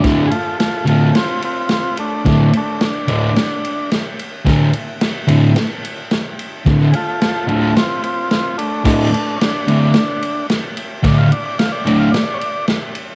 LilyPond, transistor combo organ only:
\new Staff \with { instrumentName = "Transistor combo organ" } { \time 4/4 \key c \lydian \tempo 4 = 109 r8 <f' gis' a'>8 <f' a'>8 <f' a'>8 <c' f'>8 <c' f'>8 <c' f'>8 <a d'>8 | <a d'>8 <a d'>8 <cis' d'>2 r4 | r1 | r8 <f' gis' a'>8 <f' a'>8 <f' a'>8 <c' f'>8 <c' f'>8 <c' f'>8 <a d'>8 |
<a d'>8 <a d'>8 <cis' d'>2 r4 | d''16 f''16 d''16 d''16 f''16 d''16 d''16 f''16 d''8 <cis'' d''>8 r4 | }